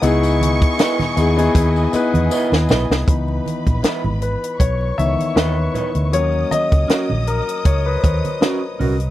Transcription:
0.02 0.63 C#2 loud
0.02 0.75 B3 medium
0.02 0.76 D#4 medium
0.02 3.04 E4 medium
0.02 0.76 E4 medium
0.02 0.76 G#4 medium
0.02 3.03 D#5 medium
0.02 3.03 G#5 loud
0.02 2.28 C#6 loud
0.02 closed hi-hat medium
0.02 tambourine soft
0.02 muted conga soft
0.23 closed hi-hat soft
0.23 tambourine soft
0.41 closed hi-hat medium
0.41 high conga medium
0.62 kick medium
0.62 closed hi-hat soft
0.78 0.97 E4 medium
0.78 0.97 B4 medium
0.78 0.98 D#5 medium
0.78 snare loud
0.78 closed hi-hat loud
0.78 tambourine medium
0.78 muted conga soft
0.99 muted fingered electric bass stroke soft
0.99 snare soft
0.99 closed hi-hat soft
0.99 muted conga soft
0.99 high conga soft
0.99 low conga medium
1.16 1.47 D#2 medium
1.16 1.30 B3 medium
1.16 1.30 D#4 medium
1.16 1.30 E4 medium
1.16 1.31 G#4 medium
1.16 closed hi-hat medium
1.16 tambourine soft
1.37 1.73 B3 medium
1.37 1.74 D#4 medium
1.37 1.74 E4 medium
1.37 1.75 G#4 loud
1.37 closed hi-hat medium
1.37 tambourine soft
1.55 1.85 D#2 loud
1.55 kick medium
1.55 closed hi-hat medium
1.55 tambourine soft
1.76 tambourine soft
1.93 2.66 B3 medium
1.93 2.67 D#4 medium
1.93 2.67 E4 medium
1.93 2.67 B4 medium
1.93 muted fingered electric bass stroke soft
1.93 closed hi-hat medium
1.93 tambourine medium
2.14 2.28 E2 medium
2.14 closed hi-hat medium
2.14 high conga medium
2.31 2.49 E4 medium
2.31 2.50 B4 medium
2.31 2.50 D#5 medium
2.31 tambourine medium
2.52 2.66 D#2 medium
2.52 snare medium
2.52 muted conga soft
2.69 2.86 B1 medium
2.69 2.83 E4 medium
2.69 2.84 B4 medium
2.69 2.84 D#5 medium
2.69 snare medium
2.69 tambourine medium
2.69 low conga medium
2.90 3.04 C2 medium
2.90 snare medium
3.06 3.38 C#2 medium
3.06 3.60 E3 soft
3.06 3.60 B3 soft
3.06 3.60 D#4 medium
3.06 4.57 B4 medium
3.06 4.57 B5 medium
3.06 kick loud
3.06 closed hi-hat medium
3.06 muted conga soft
3.28 muted conga soft
3.46 closed hi-hat medium
3.46 high conga medium
3.67 3.80 A#1 medium
3.67 kick medium
3.67 closed hi-hat soft
3.83 4.02 E4 medium
3.83 4.02 B4 medium
3.83 4.03 D#5 medium
3.83 snare medium
3.83 closed hi-hat medium
3.83 muted conga soft
4.04 4.35 G#1 medium
4.04 muted conga soft
4.04 high conga medium
4.04 low conga medium
4.22 4.62 B4 medium
4.22 closed hi-hat medium
4.44 closed hi-hat medium
4.60 4.90 B1 medium
4.60 4.99 C#5 medium
4.60 6.10 C#5 medium
4.60 6.10 C#6 medium
4.60 kick medium
4.60 closed hi-hat medium
4.60 muted conga soft
4.81 muted conga soft
4.98 5.15 C#2 medium
4.98 5.33 D#3 soft
4.98 5.33 E3 soft
4.98 5.33 B3 soft
4.98 5.38 E5 medium
4.98 closed hi-hat medium
5.19 closed hi-hat medium
5.19 high conga medium
5.36 5.67 D#2 loud
5.36 5.54 E4 medium
5.36 5.72 B4 medium
5.36 5.55 B4 medium
5.36 5.55 D#5 medium
5.36 snare loud
5.36 closed hi-hat medium
5.74 5.89 E4 medium
5.74 5.89 B4 medium
5.74 5.90 D#5 medium
5.74 closed hi-hat medium
5.74 low conga medium
5.95 6.13 D2 medium
5.95 closed hi-hat soft
6.13 6.43 D#2 medium
6.13 9.10 F#3 soft
6.13 9.10 A#3 soft
6.13 9.10 C#4 medium
6.13 6.53 C#5 medium
6.13 9.10 D#5 medium
6.13 9.10 D#6 loud
6.13 closed hi-hat medium
6.34 muted conga soft
6.51 7.30 D#5 loud
6.51 closed hi-hat medium
6.51 high conga medium
6.72 6.86 C#2 medium
6.72 kick medium
6.72 closed hi-hat soft
6.88 7.07 C#4 medium
6.88 7.07 F#4 medium
6.88 7.08 A#4 medium
6.88 snare medium
6.88 closed hi-hat medium
6.88 muted conga soft
7.09 7.40 A#1 medium
7.09 muted conga soft
7.09 high conga medium
7.09 low conga medium
7.27 7.67 A#4 medium
7.27 closed hi-hat medium
7.49 closed hi-hat medium
7.65 7.96 C#2 medium
7.65 7.85 C#5 medium
7.65 kick medium
7.65 closed hi-hat medium
7.65 muted conga soft
7.86 7.97 B4 medium
7.96 8.03 C5 medium
8.04 8.20 D#2 medium
8.04 8.39 C#5 medium
8.04 kick medium
8.04 closed hi-hat medium
8.25 closed hi-hat medium
8.25 high conga medium
8.41 8.60 C#4 medium
8.41 8.60 F#4 medium
8.41 8.61 A#4 medium
8.41 snare loud
8.41 closed hi-hat medium
8.41 muted conga soft
8.79 9.10 C2 medium
8.79 8.94 C#4 medium
8.79 8.95 F#4 medium
8.79 8.95 A#4 medium
8.79 open hi-hat soft
8.79 low conga medium
9.00 closed hi-hat soft

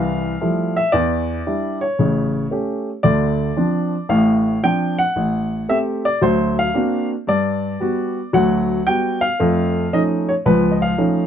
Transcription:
0.00 0.34 C2 medium
0.00 0.33 E3 medium
0.00 0.79 F5 loud
0.41 0.78 F3 medium
0.41 0.78 G3 soft
0.41 0.78 A3 soft
0.41 0.78 E4 medium
0.77 0.92 E5 medium
0.92 1.39 E2 medium
0.92 1.39 E3 medium
0.92 1.77 D5 medium
1.47 1.83 G3 soft
1.47 1.84 D4 soft
1.47 1.84 E4 medium
1.81 2.47 C#5 medium
1.99 2.45 A1 medium
1.99 2.45 C#3 medium
2.51 2.88 A3 soft
2.51 2.89 C#4 soft
2.51 2.89 G4 medium
3.03 3.50 D2 medium
3.03 3.50 D3 medium
3.03 4.13 D5 medium
3.56 3.94 F3 medium
3.56 3.94 C4 soft
3.56 3.94 D4 medium
4.09 4.55 A1 medium
4.09 4.56 A2 medium
4.09 4.64 F5 medium
4.63 5.00 F3 medium
4.63 5.00 C4 soft
4.63 5.00 D4 soft
4.63 4.96 G5 medium
4.99 5.65 F#5 loud
5.16 5.62 A1 medium
5.69 6.06 A3 medium
5.69 6.06 C4 soft
5.69 6.07 G4 medium
5.69 5.77 E5 medium
6.05 6.21 D5 medium
6.21 6.68 D2 medium
6.21 6.68 F#3 medium
6.21 6.55 C5 medium
6.59 7.07 F5 medium
6.74 7.12 A#3 medium
6.74 7.12 C4 soft
6.74 7.12 D4 soft
6.74 7.12 F#4 medium
7.27 7.73 G2 medium
7.27 8.30 D5 medium
7.80 8.18 G3 soft
7.80 8.18 B3 soft
7.80 8.18 F#4 medium
8.33 8.79 D2 medium
8.33 8.79 F#3 medium
8.33 8.83 F#5 medium
8.87 9.24 G3 medium
8.87 9.24 B3 soft
8.87 9.24 F#4 medium
8.87 9.23 G5 medium
9.21 9.94 F5 loud
9.40 9.86 F2 medium
9.40 9.86 A3 medium
9.93 10.30 F3 soft
9.93 10.30 A3 soft
9.93 10.30 C#4 soft
9.93 10.31 D#4 medium
9.93 10.01 D#5 medium
10.29 10.34 C#5 medium
10.46 10.92 C#2 medium
10.46 10.92 F3 medium
10.46 10.73 B4 medium
10.71 10.81 D#5 medium
10.82 11.27 F5 medium
10.98 11.27 F3 soft
10.98 11.27 A3 soft
10.98 11.27 C#4 soft
10.98 11.27 D#4 medium

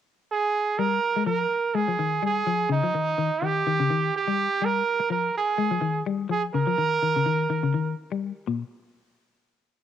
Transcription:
0.32 0.80 G#4 medium
0.79 0.98 G3 medium
0.79 1.26 A#4 loud
1.16 1.25 G#3 medium
1.26 1.46 F3 medium
1.26 1.77 A#4 medium
1.75 1.86 G#3 medium
1.75 2.23 G#4 medium
1.88 1.97 F3 medium
1.99 2.18 D#3 medium
2.23 2.42 G3 medium
2.23 2.69 G#4 medium
2.47 2.66 F3 medium
2.69 2.81 C#3 medium
2.69 3.46 D#4 medium
2.83 2.92 F3 medium
2.95 3.14 D#3 medium
3.18 3.29 D#3 medium
3.42 3.62 D#3 medium
3.42 4.16 G4 medium
3.67 3.78 D#3 medium
3.80 3.89 C#3 medium
3.90 4.10 D#3 medium
4.17 4.66 G4 medium
4.28 4.47 G3 medium
4.62 4.82 G3 medium
4.62 5.11 A#4 loud
5.00 muted clean electric guitar stroke medium
5.10 5.30 F3 medium
5.10 5.34 A#4 medium
5.38 6.02 G#4 medium
5.58 5.69 G#3 medium
5.71 5.80 F3 medium
5.81 6.01 D#3 medium
6.07 6.26 G3 medium
6.30 6.50 F3 medium
6.30 6.42 G#4 medium
6.54 6.66 C#3 medium
6.54 7.95 A#4 loud
6.67 6.76 F3 medium
6.78 6.98 D#3 medium
7.03 7.14 D#3 medium
7.16 7.25 C#3 medium
7.26 7.46 D#3 medium
7.50 7.61 D#3 medium
7.63 7.72 C#3 medium
7.74 7.94 D#3 medium
8.12 8.31 G3 medium
8.47 8.62 A#2 medium

